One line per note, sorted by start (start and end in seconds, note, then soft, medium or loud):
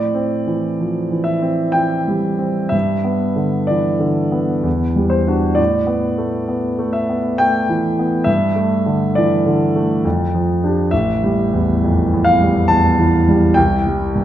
0.00 2.70 A2 soft
0.00 1.26 D5 soft
0.14 0.66 C4 soft
0.47 0.98 E3 soft
0.80 1.12 F3 soft
1.11 1.63 E3 soft
1.24 1.74 E5 soft
1.42 1.95 C4 soft
1.72 2.27 E3 soft
1.72 2.72 G5 medium
2.08 2.60 G3 soft
2.38 2.72 C4 soft
2.69 4.61 G2 soft
2.69 3.68 E5 medium
3.04 3.57 B3 soft
3.36 3.88 D3 soft
3.67 4.02 E3 soft
3.67 4.64 D5 soft
4.00 4.52 D3 soft
4.32 4.65 B3 soft
4.63 5.55 E2 soft
4.96 5.46 G3 soft
5.10 5.57 C5 soft
5.27 5.55 D4 soft
5.27 5.56 F#4 soft
5.55 8.22 A2 soft
5.55 6.93 D5 soft
5.87 6.36 B3 soft
6.18 6.67 A3 soft
6.48 6.80 B3 soft
6.79 7.28 A3 soft
6.93 7.39 E5 medium
7.09 7.58 B3 soft
7.38 7.87 A3 soft
7.38 8.26 G5 medium
7.69 8.16 E3 soft
7.99 8.28 B3 soft
8.24 10.00 G2 soft
8.24 9.14 E5 medium
8.55 9.03 A3 soft
8.86 9.34 D3 soft
9.15 9.47 E3 soft
9.15 10.04 D5 soft
9.46 9.93 D3 soft
9.76 10.05 A3 soft
10.04 10.89 F2 soft
10.35 10.80 F3 soft
10.64 10.90 D4 soft
10.64 10.90 G4 soft
10.91 13.53 A1 soft
10.91 12.26 E5 medium
11.24 11.71 G3 soft
11.53 12.00 E2 soft
11.84 12.13 F2 soft
12.13 12.59 E2 soft
12.24 12.69 F5 medium
12.41 12.87 G3 soft
12.68 13.16 E2 soft
12.68 13.56 A5 medium
12.99 13.45 E3 soft
13.28 13.57 G3 soft
13.54 14.24 C2 soft
13.54 14.24 G5 medium
13.86 14.24 G3 soft
14.15 14.24 G2 soft